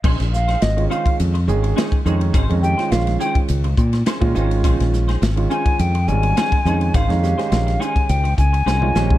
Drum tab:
CC |x---------------|----------------|----------------|----------------|
RD |-x-xxx-xxx-xxx-x|xx-xxx-xxx-xxx-x|xx-xxx-xxx-xxx-x|xx-xxx-xxx-x----|
HH |--p-p-p-p-p-p-p-|p-p-p-p-p-p-p-p-|p-p-p-p-p-p-p-p-|p-p-p-p-p-p-p-p-|
SD |-oooo-------o---|---ooo-----oo---|-oooo-------o---|-ooooo------o-o-|
T2 |----------------|----------------|----------------|-------------o--|
BD |o------o-----o--|o------o--o--o--|o------o-----o--|o------o--o----o|